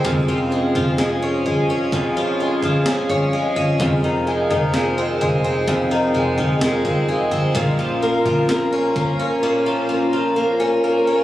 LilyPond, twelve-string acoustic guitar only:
\new Staff \with { instrumentName = "Twelve-string acoustic guitar" } { \clef bass \time 4/4 \key f \minor \tempo 4 = 64 f,16 f16 aes16 f16 aes16 des'16 aes16 des'16 f,16 f16 aes16 f16 aes16 des'16 aes16 des'16 | f,16 ees16 aes16 ees16 aes16 c'16 aes16 c'16 f,16 ees16 aes16 ees16 aes16 c'16 aes16 c'16 | bes,16 f16 bes16 f16 bes16 des'16 bes16 des'16 bes,16 f16 bes16 f16 bes16 des'16 bes16 des'16 | }